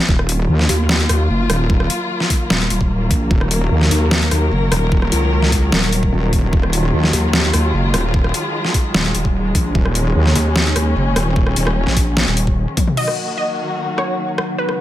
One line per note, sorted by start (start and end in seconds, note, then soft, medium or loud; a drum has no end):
0.09 0.47 D#1 loud
0.09 12.93 D#3 medium
0.09 12.93 F#3 medium
0.09 6.49 A#3 medium
0.09 3.30 F4 medium
0.09 kick loud
0.19 cross-stick medium
0.29 closed hi-hat medium
0.49 0.68 D#2 loud
0.59 snare soft
0.69 1.08 D#2 loud
0.69 closed hi-hat medium
0.89 snare loud
1.00 closed hi-hat soft
1.09 1.28 D#2 loud
1.09 cross-stick medium
1.09 closed hi-hat medium
1.30 1.48 F#1 loud
1.50 1.88 D#1 loud
1.50 cross-stick medium
1.50 closed hi-hat medium
1.70 kick loud
1.80 cross-stick medium
1.90 closed hi-hat medium
2.20 snare soft
2.30 kick medium
2.30 closed hi-hat medium
2.50 2.69 D#1 medium
2.50 snare loud
2.61 closed hi-hat soft
2.70 2.79 D#1 loud
2.70 closed hi-hat medium
2.81 3.09 D#1 loud
2.81 kick medium
3.11 3.29 A#1 medium
3.11 kick loud
3.11 closed hi-hat medium
3.31 3.69 D#1 loud
3.31 6.52 A#4 medium
3.31 kick loud
3.41 cross-stick medium
3.51 closed hi-hat medium
3.71 3.90 D#2 medium
3.81 snare soft
3.91 4.30 D#2 loud
3.91 closed hi-hat medium
4.11 snare loud
4.22 closed hi-hat soft
4.31 4.50 D#2 loud
4.31 cross-stick medium
4.31 closed hi-hat medium
4.52 4.70 F#1 loud
4.72 5.10 D#1 loud
4.72 cross-stick medium
4.72 closed hi-hat medium
4.92 kick loud
5.02 cross-stick soft
5.12 5.71 C#2 loud
5.12 closed hi-hat medium
5.42 snare soft
5.52 kick medium
5.52 closed hi-hat medium
5.72 6.11 D#1 loud
5.72 snare loud
5.83 closed hi-hat soft
5.93 closed hi-hat medium
6.03 kick medium
6.13 6.41 D#1 loud
6.33 kick loud
6.33 closed hi-hat medium
6.43 6.51 D#1 loud
6.53 6.92 D#1 loud
6.53 12.93 G#3 medium
6.53 9.74 F4 medium
6.53 kick loud
6.63 cross-stick medium
6.73 closed hi-hat medium
6.93 7.12 D#2 medium
7.04 snare soft
7.13 7.52 D#2 loud
7.13 closed hi-hat medium
7.33 snare loud
7.44 closed hi-hat soft
7.54 7.72 D#2 loud
7.54 cross-stick medium
7.54 closed hi-hat medium
7.74 7.92 F#1 loud
7.94 8.33 D#1 medium
7.94 cross-stick medium
7.94 closed hi-hat medium
8.14 kick loud
8.24 cross-stick soft
8.34 closed hi-hat medium
8.65 snare soft
8.74 kick medium
8.74 closed hi-hat medium
8.94 9.13 D#1 loud
8.94 snare loud
9.05 closed hi-hat soft
9.15 9.23 D#1 loud
9.15 closed hi-hat medium
9.25 9.53 D#1 loud
9.25 kick medium
9.55 9.74 A#1 medium
9.55 kick loud
9.55 closed hi-hat medium
9.75 10.14 D#1 loud
9.75 12.96 C#4 medium
9.75 kick loud
9.85 cross-stick soft
9.95 closed hi-hat medium
10.15 10.34 D#2 medium
10.26 snare soft
10.35 10.74 D#2 medium
10.35 closed hi-hat medium
10.56 snare loud
10.66 closed hi-hat soft
10.76 10.94 D#2 loud
10.76 cross-stick medium
10.76 closed hi-hat medium
10.96 11.14 F#1 loud
11.16 11.55 D#1 medium
11.16 cross-stick medium
11.16 closed hi-hat medium
11.36 kick loud
11.47 cross-stick medium
11.56 11.85 D#1 loud
11.56 closed hi-hat medium
11.67 cross-stick medium
11.87 12.25 A#1 loud
11.87 snare soft
11.97 kick medium
11.97 closed hi-hat medium
12.17 snare loud
12.27 12.66 D#1 loud
12.27 closed hi-hat soft
12.37 closed hi-hat medium
12.47 kick medium
12.77 kick loud
12.77 closed hi-hat medium
12.77 high tom medium
12.88 mid tom medium
12.97 14.57 D#3 medium
12.97 14.81 F#3 medium
12.97 14.57 A#3 medium
12.97 14.81 D#4 medium
12.97 14.57 F#4 medium
12.97 13.32 D#5 loud
12.97 crash medium
13.08 cross-stick soft
13.29 14.81 A#5 medium
13.35 14.81 F#4 medium
13.35 13.90 D#5 medium
13.98 14.51 C#5 medium
13.98 cross-stick medium
14.38 cross-stick medium
14.58 14.81 C#3 medium
14.58 14.81 G#3 medium
14.58 14.81 C#4 medium
14.58 14.81 F#4 medium
14.58 14.81 B4 medium
14.69 cross-stick soft